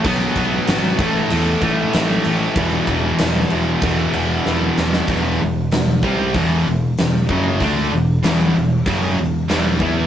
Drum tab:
CC |x-x-x-x-x-x-x-x-|x-x-x-x-x-x-----|----------------|----------------|
HH |----------------|----------------|o---o---o---o---|o---o---o---o---|
SD |----o-------o---|----o-------o-oo|----o-------o---|----o-------o---|
BD |o-o---o---o-----|o-o-----o-------|o-----o-o-----o-|o-------o-----o-|